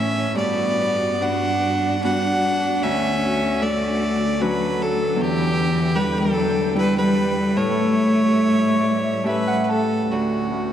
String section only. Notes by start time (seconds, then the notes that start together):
Already playing: A2 E3 C#4
0.33 G2 B3 F#4
2.80 D2 D3 F#4
5.17 E2 D3 G5
7.56 A2 G3 E5
10.11 D2 C#4 F#4